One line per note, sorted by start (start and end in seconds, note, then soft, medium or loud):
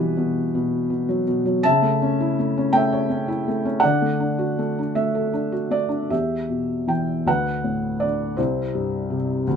0.00 0.17 B2 medium
0.00 1.42 E3 soft
0.00 1.05 G3 soft
0.00 1.23 G4 soft
0.00 1.21 B4 medium
0.17 0.53 B2 soft
0.55 0.88 B2 medium
0.90 1.26 B2 soft
1.09 1.44 F#3 soft
1.27 1.63 B2 medium
1.46 1.64 F#3 medium
1.63 3.80 C#3 medium
1.63 2.70 E5 medium
1.63 2.77 A5 loud
1.82 2.37 A3 soft
2.02 2.56 C#4 soft
2.20 3.27 E4 medium
2.39 2.71 A3 soft
2.57 3.08 C#4 soft
2.73 3.46 A3 medium
2.73 3.81 E5 medium
2.73 3.86 G5 medium
2.92 3.81 C#5 medium
3.10 3.64 C#4 medium
3.28 3.82 E4 medium
3.48 3.83 A3 soft
3.65 3.83 C#4 medium
3.80 6.08 D3 medium
3.80 5.31 D5 medium
3.80 5.29 F#5 medium
4.02 4.57 A3 soft
4.20 4.77 D4 soft
4.39 5.51 F#4 soft
4.59 4.94 A3 soft
4.79 5.32 D4 soft
4.95 5.69 A3 soft
4.95 5.75 E5 medium
5.15 6.09 A4 soft
5.33 5.87 D4 soft
5.52 6.10 F#4 soft
5.71 6.10 A3 soft
5.71 6.12 D5 medium
5.89 6.10 D4 soft
6.10 7.23 E2 soft
6.10 7.23 G4 soft
6.10 6.91 E5 medium
6.49 7.24 B2 soft
6.87 7.25 E3 soft
6.87 7.28 G5 medium
7.26 8.34 D2 soft
7.26 8.34 B4 soft
7.26 8.04 F#5 medium
7.64 8.35 A2 soft
8.00 8.37 D3 soft
8.00 8.38 D5 medium
8.37 9.43 C2 soft
8.37 9.42 E4 soft
8.37 9.15 C5 medium
8.75 9.45 G2 soft
9.10 9.45 C3 soft
9.47 9.56 D2 medium